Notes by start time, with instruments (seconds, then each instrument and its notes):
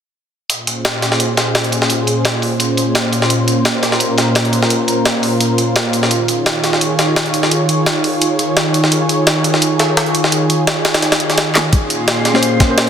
0.50 analog synth pad A#2 C#4 F4 G#4 C5, closed hi-hat
0.67 closed hi-hat
0.85 snare, closed hi-hat
1.02 snare, closed hi-hat
1.12 snare
1.20 closed hi-hat
1.37 snare, closed hi-hat
1.55 snare, closed hi-hat
1.64 closed hi-hat
1.72 closed hi-hat
1.82 snare
1.90 closed hi-hat
2.07 closed hi-hat
2.25 snare, closed hi-hat
2.42 closed hi-hat, open hi-hat
2.60 closed hi-hat
2.77 closed hi-hat
2.95 snare, closed hi-hat
3.12 closed hi-hat
3.22 snare
3.30 analog synth pad A#4, closed hi-hat
3.48 closed hi-hat
3.65 snare, closed hi-hat
3.83 snare, closed hi-hat
3.92 snare
4.00 closed hi-hat
4.18 snare, closed hi-hat
4.35 snare, closed hi-hat
4.45 closed hi-hat
4.53 closed hi-hat
4.63 snare
4.70 closed hi-hat
4.88 closed hi-hat
5.05 snare, closed hi-hat
5.23 closed hi-hat, open hi-hat
5.41 closed hi-hat
5.58 closed hi-hat
5.76 snare, closed hi-hat
5.93 closed hi-hat
6.03 snare
6.11 analog synth pad D#3 G#4 C#5, closed hi-hat
6.28 closed hi-hat
6.46 snare, closed hi-hat
6.64 snare, closed hi-hat
6.73 snare
6.81 closed hi-hat
6.99 snare, closed hi-hat
7.16 snare, closed hi-hat
7.26 closed hi-hat
7.34 closed hi-hat
7.43 snare
7.51 closed hi-hat
7.69 closed hi-hat
7.86 snare, closed hi-hat
8.04 closed hi-hat, open hi-hat
8.22 closed hi-hat
8.39 closed hi-hat
8.57 snare, closed hi-hat
8.74 closed hi-hat
8.84 snare
8.92 closed hi-hat
9.09 closed hi-hat
9.27 snare, closed hi-hat
9.44 closed hi-hat
9.54 snare
9.62 closed hi-hat
9.79 snare, closed hi-hat
9.97 snare, closed hi-hat
10.06 closed hi-hat
10.15 closed hi-hat
10.24 snare
10.32 closed hi-hat
10.50 closed hi-hat
10.67 snare, closed hi-hat
10.85 snare, closed hi-hat
10.94 snare, closed hi-hat
11.02 snare, closed hi-hat
11.12 snare, closed hi-hat
11.20 closed hi-hat
11.30 snare, closed hi-hat
11.38 snare, closed hi-hat
11.55 snare, clap, closed hi-hat
11.72 analog synth pad A#2 C#4 F4 C6, kick, closed hi-hat
11.90 closed hi-hat
12.08 snare, closed hi-hat
12.25 snare, closed hi-hat
12.34 tine electric piano A#3 C#4 G#4 C5, snare
12.43 closed hi-hat
12.60 kick, snare, closed hi-hat
12.68 tine electric piano A#3 C#4 G#4 C5
12.78 snare, closed hi-hat